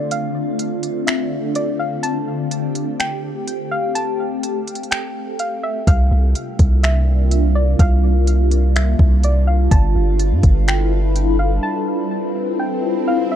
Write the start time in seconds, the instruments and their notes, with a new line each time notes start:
Already playing: ambient pad D3 A3 C4 D4 F4
0.11 synth pluck F5, closed hi-hat
0.59 closed hi-hat
0.83 closed hi-hat
1.07 synth pluck E5, finger snap, closed hi-hat
1.55 synth pluck D5, closed hi-hat
1.79 synth pluck F5
2.03 ambient pad A3 G4, synth pluck A5, closed hi-hat
2.51 closed hi-hat
2.75 closed hi-hat
3.00 synth pluck G5, finger snap, closed hi-hat
3.48 closed hi-hat
3.71 synth pluck F5
3.95 synth pluck A5, closed hi-hat
4.43 closed hi-hat
4.67 closed hi-hat
4.75 closed hi-hat
4.83 closed hi-hat
4.91 synth pluck G5, finger snap, closed hi-hat
5.39 synth pluck F5, closed hi-hat
5.63 synth pluck E5
5.87 808-style bass C2, ambient pad C3 G3 A#3 D4 F4, synth pluck F5, kick, closed hi-hat
6.11 808-style bass C2
6.35 closed hi-hat
6.59 808-style bass C2, kick, closed hi-hat
6.83 synth pluck E5, finger snap, closed hi-hat
7.31 closed hi-hat
7.55 synth pluck D5
7.79 808-style bass C2, synth pluck F5, kick, closed hi-hat
8.27 closed hi-hat
8.51 closed hi-hat
8.76 synth pluck E5, finger snap, closed hi-hat
8.99 808-style bass C2, kick
9.23 synth pluck D5, closed hi-hat
9.47 synth pluck F5
9.71 808-style bass G1, ambient pad D4 E4 A4 B4, synth pluck A5, kick, closed hi-hat
9.95 808-style bass G1
10.19 closed hi-hat
10.31 808-style bass G2
10.43 808-style bass G1, kick, closed hi-hat
10.68 synth pluck G5, finger snap, closed hi-hat
11.16 closed hi-hat
11.39 synth pluck F5
11.63 synth pluck A5, swell
12.59 synth pluck G5
13.08 synth pluck F5
13.32 synth pluck E5